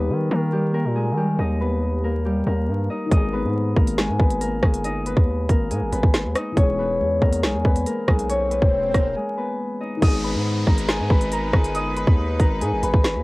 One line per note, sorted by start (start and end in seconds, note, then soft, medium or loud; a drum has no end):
0.00 0.11 D#2 loud
0.00 3.05 D#3 medium
0.00 3.07 G3 medium
0.00 0.37 B3 medium
0.00 1.39 D#4 medium
0.00 3.10 G4 medium
0.00 0.59 G#4 medium
0.00 0.37 B4 medium
0.00 1.39 D#5 loud
0.10 0.30 D#3 loud
0.31 0.86 D#3 loud
0.31 0.74 A#3 medium
0.31 0.74 A#4 medium
0.53 1.17 G3 medium
0.53 1.02 G4 medium
0.74 1.67 A#3 medium
0.74 1.67 A#4 medium
0.85 1.13 A#2 loud
0.96 3.17 G#3 medium
0.96 1.23 G#4 medium
1.12 1.38 D#3 loud
1.17 2.25 G3 medium
1.17 2.25 G4 medium
1.39 2.43 D#2 loud
1.39 2.90 D#4 medium
1.39 2.90 D#5 medium
1.61 2.10 B3 medium
1.61 2.10 B4 medium
2.04 2.47 A#3 medium
2.04 2.47 A#4 medium
2.25 3.17 G3 medium
2.25 4.04 G4 medium
2.47 2.70 D#2 loud
2.47 3.39 A#3 medium
2.47 3.39 A#4 medium
2.68 2.89 G2 medium
2.90 3.12 D#4 medium
2.90 3.11 D#5 medium
3.06 6.50 D#3 medium
3.06 6.52 G#3 medium
3.12 3.45 G#1 loud
3.12 6.54 B3 medium
3.12 4.85 D#4 medium
3.12 4.84 D#5 loud
3.12 kick loud
3.12 closed hi-hat medium
3.17 6.56 G#4 medium
3.33 3.82 B3 medium
3.33 3.82 B4 medium
3.44 3.75 G#2 loud
3.76 4.10 G#1 loud
3.76 4.25 A#3 medium
3.76 4.25 A#4 medium
3.76 kick medium
3.87 closed hi-hat medium
3.98 4.62 G#3 medium
3.98 4.62 G#4 medium
3.98 snare loud
3.98 closed hi-hat medium
4.09 4.19 G#2 loud
4.19 4.61 G#1 loud
4.19 4.47 B3 medium
4.19 4.47 B4 medium
4.19 kick loud
4.30 closed hi-hat medium
4.41 5.12 A#3 medium
4.41 5.12 A#4 medium
4.41 closed hi-hat loud
4.63 5.15 G1 loud
4.63 5.70 G#3 medium
4.63 5.70 G#4 medium
4.63 kick loud
4.63 cross-stick loud
4.74 closed hi-hat medium
4.84 6.36 D#4 medium
4.84 6.35 D#5 medium
4.84 closed hi-hat medium
5.06 5.55 B3 medium
5.06 5.55 B4 medium
5.06 closed hi-hat medium
5.17 5.48 D#2 loud
5.17 kick medium
5.49 5.72 G#1 loud
5.49 5.98 A#3 medium
5.49 5.98 A#4 medium
5.49 kick medium
5.49 closed hi-hat medium
5.71 5.83 G#2 loud
5.71 6.62 G#3 medium
5.71 7.43 G#4 medium
5.71 closed hi-hat medium
5.81 5.92 G#1 loud
5.92 6.03 G#1 loud
5.92 6.79 B3 medium
5.92 6.78 B4 medium
5.92 closed hi-hat medium
6.03 6.26 G#1 loud
6.03 kick medium
6.14 snare loud
6.14 closed hi-hat medium
6.24 6.35 D#2 loud
6.35 9.07 D#4 medium
6.35 8.14 D#5 medium
6.35 cross-stick loud
6.35 closed hi-hat medium
6.52 9.96 E3 medium
6.52 9.97 G#3 medium
6.57 7.01 E1 loud
6.57 9.99 B3 medium
6.57 8.30 C#4 medium
6.57 8.29 C#5 loud
6.57 kick loud
6.57 closed hi-hat medium
6.57 swell medium
6.62 10.01 G#4 medium
6.79 7.28 B3 medium
6.79 7.28 B4 medium
7.00 7.21 E2 loud
7.22 7.45 E2 loud
7.22 7.71 A#3 medium
7.22 7.71 A#4 medium
7.22 kick medium
7.33 closed hi-hat medium
7.43 7.56 B1 medium
7.43 8.08 G#3 medium
7.43 8.08 G#4 medium
7.43 snare loud
7.43 closed hi-hat medium
7.54 7.64 E2 loud
7.65 7.86 E2 loud
7.65 7.93 B3 medium
7.65 7.93 B4 medium
7.65 kick loud
7.76 closed hi-hat medium
7.86 8.57 A#3 medium
7.86 8.57 A#4 medium
7.86 closed hi-hat medium
8.08 8.60 B1 loud
8.08 9.16 G#3 medium
8.08 9.16 G#4 medium
8.08 kick loud
8.08 cross-stick loud
8.19 closed hi-hat medium
8.29 11.20 C#4 medium
8.29 10.21 C#5 loud
8.29 closed hi-hat medium
8.51 9.00 B3 medium
8.51 9.00 B4 medium
8.51 closed hi-hat medium
8.62 8.93 E1 loud
8.62 kick medium
8.94 9.15 E1 loud
8.94 9.43 A#3 medium
8.94 9.43 A#4 medium
8.94 kick medium
8.94 cross-stick loud
8.94 closed hi-hat medium
9.16 10.07 G#3 medium
9.16 10.89 G#4 medium
9.37 10.73 B3 medium
9.37 10.24 B4 medium
9.81 12.52 D#4 medium
9.81 10.03 D#5 medium
9.97 13.23 D#3 medium
9.97 13.23 G#3 medium
10.02 10.36 G#1 loud
10.02 13.23 G#3 medium
10.02 13.23 B3 medium
10.02 13.23 D#4 medium
10.02 13.23 B4 medium
10.02 11.75 D#5 medium
10.02 11.20 D#6 loud
10.02 kick loud
10.02 closed hi-hat medium
10.02 crash loud
10.02 downlifter medium
10.08 13.23 G#4 medium
10.24 10.73 B4 medium
10.24 10.73 B5 medium
10.35 10.65 G#2 medium
10.67 11.01 G#1 loud
10.67 11.16 A#4 medium
10.67 11.16 A#5 medium
10.67 kick medium
10.78 closed hi-hat medium
10.89 11.54 G#4 medium
10.89 11.53 G#5 medium
10.89 snare loud
10.89 closed hi-hat medium
10.99 11.10 G#2 medium
11.10 11.52 G#1 loud
11.10 11.38 B4 medium
11.10 11.38 B5 medium
11.10 kick loud
11.21 closed hi-hat medium
11.32 12.03 A#4 medium
11.32 12.03 A#5 medium
11.32 closed hi-hat loud
11.53 12.05 G1 loud
11.53 12.62 G#4 medium
11.53 12.61 G#5 medium
11.53 kick loud
11.53 cross-stick loud
11.64 closed hi-hat medium
11.75 13.23 D#5 medium
11.75 12.93 D#6 loud
11.75 closed hi-hat medium
11.97 12.46 B4 medium
11.97 12.46 B5 medium
11.97 closed hi-hat medium
12.07 12.38 D#2 loud
12.07 kick medium
12.40 12.63 G#1 loud
12.40 12.89 A#4 medium
12.40 12.89 A#5 medium
12.40 kick medium
12.40 closed hi-hat medium
12.61 12.74 G#2 loud
12.61 13.23 G#4 medium
12.61 13.23 G#5 medium
12.61 closed hi-hat medium
12.72 12.82 G#1 loud
12.83 12.93 G#1 loud
12.83 13.23 B4 medium
12.83 13.23 B5 medium
12.83 closed hi-hat medium
12.94 13.17 G#1 loud
12.94 kick medium
13.04 snare loud
13.04 closed hi-hat loud
13.15 13.23 D#2 loud